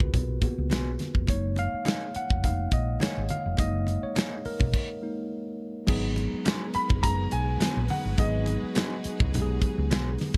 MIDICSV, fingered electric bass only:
0, 0, Header, 1, 3, 480
1, 0, Start_track
1, 0, Tempo, 574713
1, 1072, Time_signature, 4, 2, 24, 8
1, 8664, End_track
2, 0, Start_track
2, 0, Title_t, "Fingered electric bass"
2, 0, Program_c, 0, 33
2, 5, Note_on_c, 0, 37, 64
2, 96, Note_off_c, 0, 37, 0
2, 117, Note_on_c, 0, 35, 76
2, 316, Note_off_c, 0, 35, 0
2, 487, Note_on_c, 0, 37, 80
2, 595, Note_off_c, 0, 37, 0
2, 595, Note_on_c, 0, 35, 79
2, 796, Note_off_c, 0, 35, 0
2, 961, Note_on_c, 0, 29, 76
2, 1054, Note_off_c, 0, 29, 0
2, 1078, Note_on_c, 0, 30, 99
2, 1386, Note_off_c, 0, 30, 0
2, 1927, Note_on_c, 0, 29, 77
2, 2220, Note_off_c, 0, 29, 0
2, 2275, Note_on_c, 0, 34, 81
2, 2476, Note_off_c, 0, 34, 0
2, 2651, Note_on_c, 0, 32, 87
2, 2740, Note_off_c, 0, 32, 0
2, 2888, Note_on_c, 0, 29, 78
2, 2978, Note_off_c, 0, 29, 0
2, 2998, Note_on_c, 0, 30, 100
2, 3307, Note_off_c, 0, 30, 0
2, 3848, Note_on_c, 0, 35, 72
2, 3938, Note_off_c, 0, 35, 0
2, 4918, Note_on_c, 0, 32, 97
2, 5227, Note_off_c, 0, 32, 0
2, 5768, Note_on_c, 0, 30, 82
2, 6060, Note_off_c, 0, 30, 0
2, 6120, Note_on_c, 0, 35, 75
2, 6319, Note_off_c, 0, 35, 0
2, 6488, Note_on_c, 0, 34, 85
2, 6578, Note_off_c, 0, 34, 0
2, 6725, Note_on_c, 0, 31, 85
2, 6816, Note_off_c, 0, 31, 0
2, 6836, Note_on_c, 0, 32, 111
2, 7145, Note_off_c, 0, 32, 0
2, 7688, Note_on_c, 0, 37, 86
2, 7801, Note_off_c, 0, 37, 0
2, 7801, Note_on_c, 0, 35, 106
2, 7999, Note_off_c, 0, 35, 0
2, 8170, Note_on_c, 0, 37, 100
2, 8281, Note_off_c, 0, 37, 0
2, 8281, Note_on_c, 0, 35, 77
2, 8479, Note_off_c, 0, 35, 0
2, 8664, End_track
3, 0, Start_track
3, 0, Title_t, "Muted fingered electric bass strokes"
3, 1452, Note_on_c, 9, 29, 45
3, 1535, Note_off_c, 9, 29, 0
3, 1802, Note_on_c, 9, 29, 42
3, 1886, Note_off_c, 9, 29, 0
3, 3369, Note_on_c, 9, 29, 44
3, 3452, Note_off_c, 9, 29, 0
3, 3720, Note_on_c, 9, 29, 44
3, 3804, Note_off_c, 9, 29, 0
3, 5290, Note_on_c, 9, 29, 49
3, 5374, Note_off_c, 9, 29, 0
3, 5638, Note_on_c, 9, 29, 47
3, 5722, Note_off_c, 9, 29, 0
3, 7210, Note_on_c, 9, 29, 41
3, 7293, Note_off_c, 9, 29, 0
3, 7561, Note_on_c, 9, 29, 50
3, 7644, Note_off_c, 9, 29, 0
3, 8664, End_track
0, 0, End_of_file